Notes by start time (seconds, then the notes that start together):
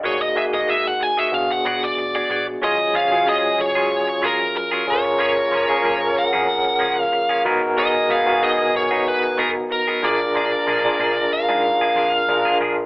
Already playing: D5
0.03 E1 A#3 D#4 F#4 G#4 C#5 D#5
0.21 D#5, muted clean electric guitar stroke
0.35 A#3 D#4 F#4 G#4 D#5 E5
0.53 E1 A#3 F#4 G#4 D#5
0.67 G#1 A#3 F#4 G#4 D#5 E5
0.86 F#5, muted clean electric guitar stroke
1.00 F#1 G#5, muted clean electric guitar stroke
1.17 A#3 F#4 G#4 D#5 E5
1.32 A#1 B3 D4 F#4 G#4 F5, muted clean electric guitar stroke
1.51 F#5, muted clean electric guitar stroke
1.64 A#1 B3 F#4 G#4 D5 F#5
1.83 D5, muted clean electric guitar stroke
1.97 F1, muted clean electric guitar stroke
2.15 B3 F#4 G#4 D5
2.29 A#1 B3 F#4 G#4 D5
2.47 muted clean electric guitar stroke
2.62 D#2 F3 F#3 G#3 C#4 F4 G#4 D#5
2.79 muted clean electric guitar stroke
2.94 D#2 F#3 C#4 F4 G#4 F5
3.11 F#3 C#4 F4 G#4
3.26 F#3 C#4 F4 G#4 D#5
3.43 muted clean electric guitar stroke
3.58 C#2 C#5, muted clean electric guitar stroke
3.75 F#3 C#4 F4 G#4
3.90 muted clean electric guitar stroke
4.08 muted clean electric guitar stroke
4.22 G#1 F#3 C#4 F4 G#4 A#4
4.40 muted clean electric guitar stroke
4.55 A#4, muted clean electric guitar stroke
4.72 F#3 C#4 F4 G#4
4.87 F#1 F3 A#3 C#4 F4 G#4 A4 A#4 C#5
4.95 A#4
5.04 muted clean electric guitar stroke
5.18 F3 A#3 C#4 G#4 C#5
5.36 muted clean electric guitar stroke
5.51 F#1 F3 A#3 C#4 G#4
5.69 F3 A#3 C#4 F4 G#4 A#4
5.83 F#2 F3 A#3 C#4 G#4
6.01 muted clean electric guitar stroke
6.15 F#5, muted clean electric guitar stroke
6.33 F2 F3 A#3 C#4 G#4 A#4
6.48 muted clean electric guitar stroke
6.65 muted clean electric guitar stroke
6.79 C#2 F3 A#3 C#4 G#4
6.97 F5, muted clean electric guitar stroke
7.12 muted clean electric guitar stroke
7.29 F3 A#3 C#4 G#4
7.44 G#1 D#3 F#3 G#3 B3 D#4 F#4 G#4 A#4
7.62 muted clean electric guitar stroke
7.77 F#3 B3 D#4 G#4 D#5
7.95 muted clean electric guitar stroke
8.09 G#1 F#3 B3 D#4 G#4 F5
8.26 F#3 B3 D#4 F#4 G#4 A#4
8.41 F#3 B3 D#4 G#4 D#5
8.59 muted clean electric guitar stroke
8.74 A#1 C#5, muted clean electric guitar stroke
8.91 F#3 B3 D#4 F#4 G#4 A#5
9.06 G#1 B4, muted clean electric guitar stroke
9.23 muted clean electric guitar stroke
9.37 F#1 F#3 B3 D#4 G#4 A#4
9.55 muted clean electric guitar stroke
9.70 A#4, muted clean electric guitar stroke
9.87 F#3 B3 D#4 G#4
10.02 A#1 F3 A#3 D4 F4 G#4 A#4 D5
10.20 muted clean electric guitar stroke
10.34 F3 A#3 D4 G#4 D5
10.66 A#1 F3 A#3 D4 G#4
10.84 F3 A#3 D4 F4 G#4 A#4
10.99 A#2 F3 A#3 D4 G#4
11.17 muted clean electric guitar stroke
11.32 F5, muted clean electric guitar stroke
11.49 G#2 F3 A#3 D4 F4 G#4 A#4
11.64 muted clean electric guitar stroke
11.81 F3 A#3 D4 G#4
11.96 F2 F3 A#3 D4 G#4
12.14 muted clean electric guitar stroke
12.28 A#1 F3 A#3 D4 F4 G#4 A#4, muted clean electric guitar stroke
12.45 F3 A#3 D4 G#4
12.60 A#1 F3 A#3 D4 G#4
12.77 muted clean electric guitar stroke